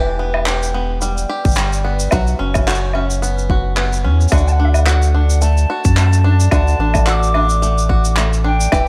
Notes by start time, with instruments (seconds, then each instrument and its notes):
Already playing: sub bass E1, five-string banjo E3 G4
0.19 five-string banjo B3
0.34 low woodblock
0.46 five-string banjo G4, clap, shaker
0.63 shaker
0.74 five-string banjo B3
1.01 five-string banjo G3, shaker
1.18 shaker
1.29 five-string banjo G4
1.45 sub bass G1, kick, shaker
1.48 shaker
1.51 shaker
1.54 five-string banjo G3, clap, shaker
1.58 shaker
1.73 shaker
1.85 five-string banjo B3
2.00 shaker
2.11 sub bass B1, five-string banjo F#3 F#4, kick, low woodblock, shaker
2.27 shaker
2.39 sub bass F#1, five-string banjo C#4
2.54 kick, low woodblock, shaker
2.67 five-string banjo F#4, clap, shaker
2.75 shaker
2.93 five-string banjo C#4, low woodblock
3.10 shaker
3.22 five-string banjo B3, shaker
3.38 shaker
3.50 five-string banjo F#4, kick
3.77 five-string banjo B3, clap
3.93 shaker
4.04 sub bass E2, five-string banjo C#4
4.21 shaker
4.28 five-string banjo D3, flute F#5, kick, low woodblock, shaker
4.32 sub bass D2, five-string banjo F#4, shaker
4.37 shaker
4.47 flute A5, shaker
4.52 flute F#5
4.60 five-string banjo D4
4.64 flute E5
4.69 flute F#5
4.74 low woodblock, shaker
4.86 five-string banjo F#4, flute F#5, clap, shaker
5.02 shaker
5.14 five-string banjo D4
5.30 shaker
5.41 five-string banjo A3, flute A5, shaker
5.57 shaker
5.70 five-string banjo F#4
5.85 sub bass F#2, kick, shaker
5.97 five-string banjo A3, clap, shaker
6.13 shaker
6.24 five-string banjo D4
6.40 shaker
6.51 sub bass D2, five-string banjo D3 F#4, flute A5, kick, low woodblock, shaker
6.68 shaker
6.79 sub bass A1, five-string banjo D4
6.94 kick, low woodblock, shaker
7.07 five-string banjo F#4, flute E6, clap, shaker
7.12 flute D6
7.23 shaker
7.34 five-string banjo D4, low woodblock
7.49 shaker
7.62 five-string banjo A3, shaker
7.78 shaker
7.89 five-string banjo F#4, kick
8.05 shaker
8.17 five-string banjo A3, clap, shaker
8.33 shaker
8.44 five-string banjo D4, flute G5
8.61 shaker
8.72 sub bass E1, five-string banjo E3 G4, kick, low woodblock, shaker